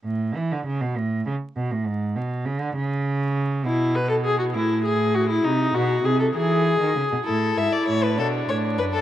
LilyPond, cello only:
\new Staff \with { instrumentName = "Cello" } { \clef bass \time 6/8 \key a \major \tempo 4. = 67 a,8 e16 d16 cis16 b,16 a,8 cis8 b,16 a,16 | gis,8 b,8 cis16 d16 cis4. | b,4. a,4. | bis,8 b,8 bis,8 e8. dis16 cis16 b,16 |
a,8 gis,8 a,8 b,8 a,8 fis,8 | }